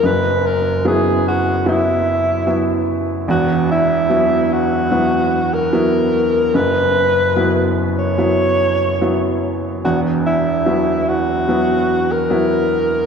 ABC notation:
X:1
M:4/4
L:1/16
Q:1/4=74
K:F#mix
V:1 name="Alto saxophone"
B2 A2 G2 F2 E6 z2 | F2 E4 F4- F A4- A | B6 z c6- c z2 | F2 E4 F4- F A4- A |]
V:2 name="Felt piano"
[F,,,F,,]4 [F,B,E]4 [F,B,E]4 [F,B,E]4 | [E,,,E,,]4 [F,B,E]4 [F,B,E]4 [F,B,E]4 | [F,,,F,,]4 [F,B,E]4 [F,B,E]4 [F,B,E]4 | [E,,,E,,]4 [F,B,E]4 [F,B,E]4 [F,B,E]4 |]